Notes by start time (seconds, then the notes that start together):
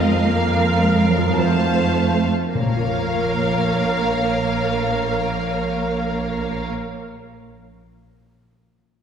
Already playing: F2 F3 C4 D#4 A#4 C5 D#5 F5
0.01 G#3
0.23 A#3 A#4 F5
0.79 G#3
1.08 F#3
1.17 F3
1.22 C4
1.26 D#4
1.31 F#4 A5
1.35 F2 A3 C5 F5
2.53 A#1 A#2 A#3 A#4 C#5 F5
2.62 A#3
2.69 C#4
2.76 F4
2.83 C#5